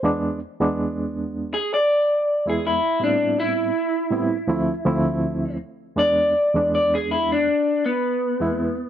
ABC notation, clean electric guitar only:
X:1
M:4/4
L:1/16
Q:"Swing 16ths" 1/4=81
K:Ephr
V:1 name="Clean electric guitar"
z8 ^G d4 G E2 | D2 E12 z2 | d4 d ^G E D3 B,6 |]